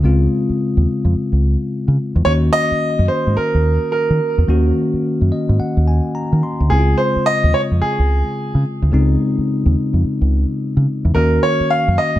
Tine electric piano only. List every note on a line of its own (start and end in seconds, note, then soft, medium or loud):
0.03 2.22 C#3 medium
0.03 2.22 G#3 medium
0.03 2.22 C4 medium
0.03 2.23 F4 medium
2.25 4.44 D#3 medium
2.25 4.44 A#3 medium
2.25 4.45 C#4 medium
2.25 4.45 F#4 medium
4.47 6.66 D#3 medium
4.47 6.67 A#3 medium
4.47 6.67 C#4 medium
4.47 6.67 F#4 medium
5.32 5.58 D#5 medium
5.60 5.85 F#5 medium
5.88 6.13 G#5 medium
6.15 6.41 A#5 medium
6.43 6.69 C6 medium
6.70 8.88 C#3 medium
6.70 8.89 G#3 medium
6.70 8.89 C4 medium
6.70 6.79 E4 medium
6.79 8.93 F4 medium
8.92 11.10 C#3 medium
8.92 11.11 G#3 medium
8.92 11.11 C4 medium
8.92 11.12 D#4 medium
11.14 12.19 D#3 medium
11.14 12.19 A#3 medium
11.14 12.19 C#4 medium
11.14 12.19 F#4 medium